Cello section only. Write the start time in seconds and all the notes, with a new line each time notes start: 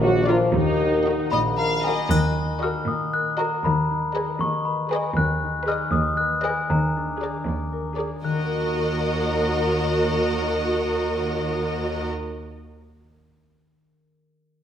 Already playing: A#2
0.54 D#2
1.31 A#2
2.11 D#2
2.88 A#2
3.64 D#2
4.41 D#2
5.16 D#2
5.93 D#2
6.70 D#2
7.46 D#2
8.23 D#2